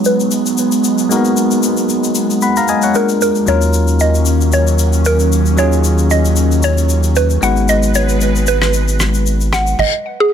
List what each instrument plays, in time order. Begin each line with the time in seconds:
Already playing: analog synth pad F#3 G#3 B3, tine electric piano G#3 B3 D#4 F#4 B4
0.05 synth pluck B4, shaker
0.20 shaker
0.31 shaker
0.46 shaker
0.58 shaker
0.72 shaker
0.84 shaker
0.98 shaker
1.09 tine electric piano G#3 A#3 D#4 F#4 A#4, shaker
1.16 tine electric piano B3
1.25 shaker
1.37 shaker
1.51 shaker
1.63 shaker
1.77 shaker
1.89 shaker
2.04 shaker
2.15 shaker
2.30 shaker
2.41 tine electric piano F#5 B5, shaker
2.56 tine electric piano F5 A#5, shaker
2.68 tine electric piano D#5 G#5, shaker
2.82 tine electric piano C#5 F#5, shaker
2.94 tine electric piano G#3 A#3 D4 F4 A#4, analog synth pad A#3 D4, synth pluck A#4, shaker
3.09 shaker
3.21 synth pluck A#4, shaker
3.35 shaker
3.46 sub bass D#2, analog synth pad D#3 F#3 C#4, tine electric piano F#3 C#4 D#4 F4 A#4, synth pluck C#5, shaker
3.62 shaker
3.73 shaker
3.88 shaker
4.00 synth pluck D#5, shaker
4.14 shaker
4.25 shaker
4.41 shaker
4.52 synth pluck C#5, shaker
4.67 shaker
4.79 shaker
4.93 shaker
5.05 synth pluck A#4, shaker
5.19 shaker
5.32 shaker
5.46 shaker
5.57 tine electric piano F#3 C#4 D#4 F4 G#4, synth pluck C#5, shaker
5.72 shaker
5.84 shaker
5.98 shaker
6.10 synth pluck D#5, shaker
6.25 shaker
6.36 shaker
6.52 shaker
6.63 synth pluck C#5, shaker
6.78 shaker
6.89 shaker
7.03 shaker
7.16 synth pluck B4, shaker
7.30 shaker
7.41 sub bass G#1, tine electric piano G#3 B3 D#4 F#4 B4, analog synth pad G#3 B4, synth pluck F#5, shaker
7.56 shaker
7.68 synth pluck D#5, shaker
7.83 shaker
7.95 synth pluck C#5, shaker
8.09 shaker
8.21 shaker
8.36 shaker
8.47 synth pluck B4, shaker
8.62 cross-stick, shaker
8.73 shaker
8.88 shaker
9.00 cross-stick, shaker
9.14 shaker
9.26 shaker
9.40 shaker
9.53 synth pluck F#5, cross-stick, shaker
9.67 shaker
9.79 synth pluck D#5, kick, crash
10.20 synth pluck G#4